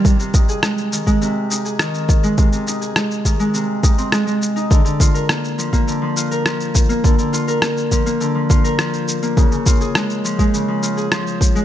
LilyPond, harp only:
\new Staff \with { instrumentName = "Harp" } { \clef bass \time 4/4 \key bes \mixolydian \tempo 4 = 103 c16 c16 ees'16 aes'16 aes16 r16 ees16 aes16 c8 ees'16 aes'16 ees8. aes16 | c16 c16 ees'16 aes'16 aes16 r16 ees16 aes16 c16 r16 ees'16 c'16 aes16 aes16 r16 ees'16 | d16 d16 f'16 bes'16 bes16 r16 f16 bes16 d16 f16 f'16 bes'16 f8. bes16 | d16 d16 f'16 bes'16 bes16 r16 f16 bes16 d16 f16 f'16 bes'16 f8. bes16 |
des16 des16 f'16 aes'16 aes16 r16 f16 aes16 des16 f16 f'16 aes'16 f8. aes16 | }